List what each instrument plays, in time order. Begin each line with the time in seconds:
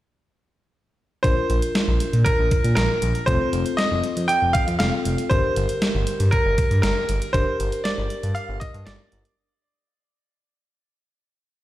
1.23 analog synth bass A#1, tine electric piano D4 F4 A#4, grand piano C5, kick, closed hi-hat
1.50 analog synth bass A#1, closed hi-hat
1.62 closed hi-hat
1.75 snare, closed hi-hat
1.88 analog synth bass A#1
2.00 closed hi-hat
2.13 analog synth bass A#2, closed hi-hat
2.25 grand piano A#4, kick, closed hi-hat
2.39 analog synth bass A#1
2.51 kick, closed hi-hat
2.64 analog synth bass A#2, closed hi-hat
2.75 analog synth bass A#1, grand piano A#4, snare, closed hi-hat
3.02 analog synth bass A#1, closed hi-hat
3.15 closed hi-hat
3.26 analog synth bass F1, tine electric piano C4 F4 A4, grand piano C5, kick, closed hi-hat
3.53 analog synth bass F1, closed hi-hat
3.66 closed hi-hat
3.77 grand piano D#5, snare, closed hi-hat
3.91 analog synth bass F1
4.04 closed hi-hat
4.17 analog synth bass F2, closed hi-hat
4.28 grand piano G5, closed hi-hat
4.42 analog synth bass F1
4.53 grand piano F5, kick, closed hi-hat
4.67 analog synth bass F2, closed hi-hat
4.79 analog synth bass F1, tine electric piano C4 F4 A4, grand piano F5, snare, closed hi-hat
5.05 analog synth bass F1, closed hi-hat
5.18 closed hi-hat
5.30 analog synth bass G1, tine electric piano D4 G4 A#4, grand piano C5, kick, closed hi-hat
5.56 analog synth bass G1, closed hi-hat
5.69 closed hi-hat
5.82 snare, closed hi-hat
5.94 analog synth bass G1
6.07 closed hi-hat
6.20 analog synth bass G2, closed hi-hat
6.31 grand piano A#4, kick, closed hi-hat
6.45 analog synth bass G1
6.58 kick, closed hi-hat
6.71 analog synth bass G2, closed hi-hat
6.82 analog synth bass G1, grand piano A#4, snare, closed hi-hat
7.09 analog synth bass G1, closed hi-hat
7.22 closed hi-hat
7.33 analog synth bass G1, tine electric piano D4 G4 A#4, grand piano C5, kick, closed hi-hat
7.60 analog synth bass G1, closed hi-hat
7.72 closed hi-hat
7.84 grand piano D5, snare, closed hi-hat
7.98 analog synth bass G1
8.10 closed hi-hat
8.23 analog synth bass G2, closed hi-hat
8.35 grand piano F5, closed hi-hat
8.49 analog synth bass G1
8.60 grand piano D#5, kick, closed hi-hat
8.74 analog synth bass G2, closed hi-hat
8.86 analog synth bass G1, grand piano D5, snare, closed hi-hat
9.12 analog synth bass G1, closed hi-hat
9.25 closed hi-hat